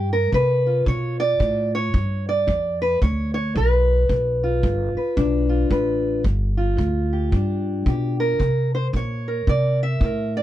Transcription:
0.00 0.29 G2 medium
0.00 0.31 G2 medium
0.00 0.12 G4 medium
0.13 0.34 A#4 medium
0.32 0.83 G2 medium
0.32 0.85 C3 medium
0.32 0.87 B4 medium
0.32 kick medium
0.67 1.97 F4 soft
0.86 1.36 G2 medium
0.86 1.39 B2 medium
0.86 1.19 C#5 loud
0.86 kick medium
1.20 1.73 D5 loud
1.40 1.90 G2 medium
1.40 1.92 A2 medium
1.40 kick medium
1.75 2.28 C#5 loud
1.94 2.44 G2 medium
1.94 2.46 G2 medium
1.94 kick medium
2.29 2.81 D5 medium
2.47 3.00 F2 medium
2.47 2.97 G2 medium
2.47 kick medium
2.82 3.02 B4 medium
3.02 3.54 D2 medium
3.02 3.51 G2 medium
3.02 3.33 C#5 medium
3.02 kick medium
3.34 3.56 C#5 medium
3.55 4.08 B1 medium
3.55 4.05 G2 medium
3.55 4.96 B4 medium
3.55 kick medium
4.09 4.62 B1 medium
4.09 4.59 G2 medium
4.09 kick medium
4.44 5.48 F4 soft
4.63 4.94 G1 medium
4.63 5.13 G2 medium
4.63 kick medium
4.95 5.70 B4 soft
4.95 muted upright bass stroke soft
5.17 5.69 B1 medium
5.17 5.67 G2 medium
5.17 6.22 D4 soft
5.17 kick medium
5.49 6.22 F4 soft
5.70 6.23 A1 medium
5.70 6.20 G2 medium
5.70 6.22 B4 soft
5.70 kick medium
6.24 6.77 G1 medium
6.24 6.74 G2 medium
6.24 kick medium
6.57 8.37 F4 soft
6.77 7.30 D2 medium
6.77 7.27 G2 medium
6.77 kick medium
7.13 7.88 G4 soft
7.32 7.84 G2 medium
7.32 7.82 G2 medium
7.32 8.38 D4 soft
7.32 kick medium
7.86 8.36 G2 medium
7.86 8.38 B2 medium
7.86 8.20 G4 soft
7.86 kick medium
8.20 8.73 A#4 medium
8.39 8.92 C3 medium
8.39 8.90 C3 medium
8.39 kick medium
8.75 8.87 C5 medium
8.93 9.45 A#2 medium
8.93 9.43 C3 medium
8.93 9.49 C#5 medium
8.93 kick medium
9.28 10.02 A#4 soft
9.47 9.99 C3 medium
9.47 9.97 C3 medium
9.47 9.80 D5 medium
9.47 kick medium
9.83 10.35 E5 medium
10.01 10.43 A2 medium
10.01 10.43 C3 medium
10.01 kick medium
10.05 10.43 A#4 soft
10.37 10.43 D5 medium

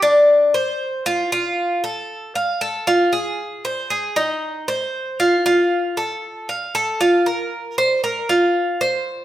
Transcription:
0.02 0.53 D4 medium
0.54 1.04 C5 medium
1.06 1.31 F4 medium
1.32 1.82 F4 medium
1.84 2.34 A4 medium
2.35 2.60 F5 medium
2.61 2.86 A4 medium
2.87 3.12 F4 medium
3.13 3.63 G#4 medium
3.65 3.90 C5 medium
3.90 4.15 G#4 medium
4.16 4.66 D#4 medium
4.68 5.18 C5 medium
5.20 5.45 F4 medium
5.46 5.96 F4 medium
5.97 6.47 A4 medium
6.49 6.74 F5 medium
6.75 7.00 A4 medium
7.01 7.25 F4 medium
7.26 7.76 A#4 medium
7.78 8.03 C5 medium
8.04 8.29 A#4 medium
8.29 8.79 F4 medium
8.81 9.25 C5 medium

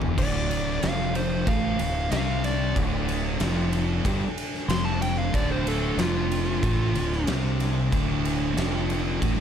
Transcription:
0.00 0.16 E1 loud
0.00 0.17 E2 medium
0.00 0.15 D3 medium
0.00 0.17 E3 loud
0.00 0.14 A3 medium
0.00 0.15 E4 medium
0.00 floor tom medium
0.16 0.78 D1 medium
0.16 0.81 D2 loud
0.16 9.40 D3 medium
0.16 0.82 D3 loud
0.16 9.40 A3 medium
0.16 9.40 D4 medium
0.16 0.81 D5 loud
0.16 kick loud
0.16 crash loud
0.51 ride medium
0.82 1.43 F1 loud
0.82 1.46 F2 loud
0.82 1.46 F3 loud
0.82 1.15 F5 loud
0.82 snare loud
0.82 ride loud
1.15 1.47 C5 medium
1.15 ride medium
1.47 1.77 A1 loud
1.47 1.79 A2 loud
1.47 1.79 A3 loud
1.47 2.10 F5 medium
1.47 kick loud
1.47 ride loud
1.79 2.10 D1 medium
1.79 2.06 D2 medium
1.79 ride medium
2.11 2.72 C2 medium
2.11 2.75 C3 medium
2.11 2.75 C4 loud
2.11 2.43 F5 medium
2.11 snare loud
2.11 ride loud
2.44 2.76 D5 loud
2.44 snare soft
2.44 ride medium
2.75 3.37 D1 loud
2.75 3.39 D2 loud
2.75 3.40 D3 loud
2.75 kick loud
2.75 ride medium
3.08 ride medium
3.40 4.01 F1 loud
3.40 4.04 F2 loud
3.40 4.05 F3 loud
3.40 snare loud
3.40 ride loud
3.73 ride medium
4.05 4.20 G1 loud
4.05 4.20 G2 loud
4.05 4.21 G3 loud
4.05 kick loud
4.05 ride loud
4.38 ride medium
4.55 snare soft
4.68 5.30 F1 loud
4.68 5.33 F2 loud
4.68 5.34 F3 loud
4.68 4.85 C6 loud
4.68 snare loud
4.68 ride loud
4.85 5.01 A5 medium
5.02 5.18 G5 medium
5.02 snare soft
5.02 ride medium
5.18 5.34 F5 medium
5.33 5.95 D1 loud
5.33 5.97 D2 loud
5.33 5.99 D3 loud
5.33 5.50 D5 loud
5.33 kick loud
5.33 ride loud
5.52 5.68 C5 medium
5.67 5.99 A4 medium
5.67 ride medium
5.97 6.58 F1 loud
5.97 6.62 F2 loud
5.97 6.62 F3 loud
5.97 7.24 F4 loud
5.97 snare loud
5.97 ride loud
6.32 ride medium
6.63 6.93 A1 loud
6.63 6.94 A2 loud
6.63 6.95 A3 loud
6.63 kick loud
6.63 ride loud
6.94 7.25 D1 medium
6.94 7.21 D2 medium
6.94 ride medium
7.12 snare soft
7.26 7.88 C2 loud
7.26 7.91 C3 loud
7.26 7.92 C4 loud
7.26 snare loud
7.26 ride loud
7.60 snare soft
7.60 ride medium
7.92 8.53 D1 medium
7.92 8.56 D2 loud
7.92 8.56 D3 loud
7.92 kick loud
7.92 ride loud
8.25 ride medium
8.56 9.17 F1 loud
8.56 9.21 F2 loud
8.56 9.21 F3 loud
8.56 snare loud
8.56 ride loud
8.90 ride medium
9.21 9.37 A1 medium
9.21 9.36 A2 loud
9.21 9.37 A3 loud
9.21 kick loud
9.21 ride loud
9.37 9.40 F2 medium

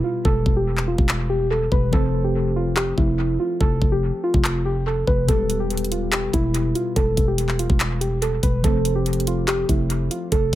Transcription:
0.00 1.88 B2 medium
0.00 1.88 G3 medium
0.00 1.89 B3 medium
0.00 0.22 F4 medium
0.00 1.90 G4 medium
0.00 1.90 B4 medium
0.25 0.45 E1 loud
0.25 0.55 A4 loud
0.25 kick loud
0.46 0.96 E1 loud
0.46 kick medium
0.57 0.86 G4 medium
0.77 clap medium
0.88 1.27 F4 medium
0.98 1.69 E1 loud
0.98 kick loud
1.09 clap loud
1.30 1.47 G4 medium
1.51 1.69 A4 medium
1.72 1.92 E1 loud
1.72 1.90 B4 medium
1.72 kick medium
1.90 2.94 F1 loud
1.90 5.23 F3 medium
1.90 5.24 A3 medium
1.90 5.25 C4 medium
1.90 2.23 A4 loud
1.90 5.25 A4 medium
1.90 kick loud
1.96 5.26 C5 medium
2.24 2.54 G4 medium
2.56 2.74 F4 medium
2.76 2.94 G4 loud
2.76 clap loud
2.98 3.38 F1 loud
2.98 3.37 E4 medium
2.98 kick medium
3.40 3.57 F4 medium
3.61 3.81 F1 loud
3.61 3.90 A4 loud
3.61 kick loud
3.82 4.12 F1 loud
3.82 kick medium
3.92 4.22 G4 medium
4.24 4.63 F4 medium
4.34 5.05 F1 loud
4.34 kick loud
4.44 clap loud
4.65 4.83 G4 medium
4.87 5.04 A4 medium
5.07 5.28 F1 loud
5.07 5.25 B4 medium
5.07 kick medium
5.26 6.29 E1 loud
5.26 8.59 B2 medium
5.26 8.60 G3 medium
5.26 8.60 B3 medium
5.26 8.61 G4 medium
5.26 5.58 A4 loud
5.26 kick loud
5.26 closed hi-hat medium
5.31 8.62 B4 medium
5.50 closed hi-hat medium
5.60 5.90 G4 medium
5.70 closed hi-hat medium
5.77 closed hi-hat medium
5.85 closed hi-hat medium
5.92 6.09 F4 medium
5.92 closed hi-hat medium
6.12 6.30 G4 medium
6.12 clap loud
6.12 closed hi-hat medium
6.33 6.74 E1 loud
6.33 6.73 E4 medium
6.33 kick medium
6.33 closed hi-hat medium
6.54 closed hi-hat medium
6.75 6.93 F4 medium
6.75 closed hi-hat medium
6.96 7.16 E1 loud
6.96 7.26 A4 loud
6.96 kick loud
6.96 closed hi-hat medium
7.17 7.68 E1 loud
7.17 kick medium
7.17 closed hi-hat medium
7.28 7.57 G4 medium
7.38 closed hi-hat medium
7.49 clap medium
7.59 7.99 F4 medium
7.59 closed hi-hat medium
7.70 8.40 E1 loud
7.70 kick loud
7.80 clap loud
7.80 closed hi-hat medium
8.01 8.19 G4 medium
8.01 closed hi-hat medium
8.22 8.40 A4 medium
8.22 closed hi-hat medium
8.43 8.63 E1 loud
8.43 8.61 B4 medium
8.43 kick medium
8.43 closed hi-hat medium
8.62 9.65 F1 loud
8.62 10.55 F3 medium
8.62 10.55 A3 medium
8.62 10.55 C4 medium
8.62 8.94 A4 loud
8.62 10.55 A4 medium
8.62 kick loud
8.62 closed hi-hat medium
8.67 10.55 C5 medium
8.85 closed hi-hat medium
8.95 9.25 G4 medium
9.06 closed hi-hat medium
9.13 closed hi-hat medium
9.20 closed hi-hat medium
9.27 9.45 F4 medium
9.27 closed hi-hat medium
9.48 9.66 G4 loud
9.48 clap loud
9.48 closed hi-hat medium
9.69 10.09 F1 loud
9.69 10.08 E4 medium
9.69 kick medium
9.69 closed hi-hat medium
9.90 closed hi-hat medium
10.11 10.29 F4 medium
10.11 closed hi-hat medium
10.32 10.52 F1 loud
10.32 10.55 A4 loud
10.32 kick loud
10.32 closed hi-hat medium

